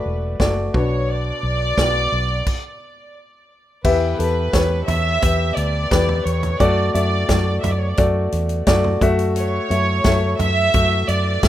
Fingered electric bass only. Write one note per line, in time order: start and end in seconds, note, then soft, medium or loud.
0.06 0.34 E1 medium
0.40 0.68 F#1 medium
0.74 1.31 B1 medium
1.43 1.71 B1 medium
1.78 2.06 B1 medium
2.12 2.41 B1 medium
3.85 4.13 E2 loud
4.19 4.47 E2 medium
4.53 4.82 E2 medium
4.88 5.16 E2 medium
5.23 5.51 E2 loud
5.57 5.85 D2 medium
5.91 6.19 E2 medium
6.25 6.54 E2 medium
6.60 6.88 F#2 loud
6.94 7.23 F#2 loud
7.29 7.57 F#2 medium
7.63 7.92 F#2 medium
7.98 8.27 F#2 medium
8.33 8.61 E2 medium
8.67 8.95 F#2 medium
9.01 9.58 F#2 medium
9.70 9.99 F#2 medium
10.05 10.33 F#2 medium
10.40 10.68 F#2 medium
10.74 11.02 F#2 medium
11.08 11.37 F#2 medium
11.43 11.48 F#2 loud